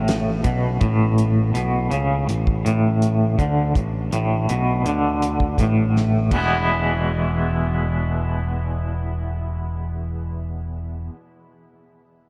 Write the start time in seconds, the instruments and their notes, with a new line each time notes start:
Already playing: picked electric bass A1, clean electric guitar A2
0.08 snare, closed hi-hat
0.44 picked electric bass B1, clean electric guitar B2, kick, closed hi-hat
0.81 picked electric bass A1, clean electric guitar A2, kick, closed hi-hat
1.18 closed hi-hat
1.54 picked electric bass B1, clean electric guitar B2, closed hi-hat
1.91 picked electric bass C#2, clean electric guitar C#3, closed hi-hat
2.27 picked electric bass A1, clean electric guitar A2, closed hi-hat
2.47 kick
2.65 picked electric bass A1, clean electric guitar A2, closed hi-hat
3.02 closed hi-hat
3.39 picked electric bass D2, clean electric guitar D3, kick, closed hi-hat
3.75 picked electric bass A1, clean electric guitar A2, kick, closed hi-hat
4.12 picked electric bass A1, clean electric guitar A2, closed hi-hat
4.49 picked electric bass B1, clean electric guitar B2, closed hi-hat
4.85 picked electric bass D2, clean electric guitar D3, closed hi-hat
5.22 closed hi-hat
5.40 kick
5.58 picked electric bass A1, clean electric guitar A2, kick, closed hi-hat
5.96 snare
6.31 picked electric bass E1, clean electric guitar E2 B2 E3 G#3, kick, crash
6.35 clean electric guitar B3 E4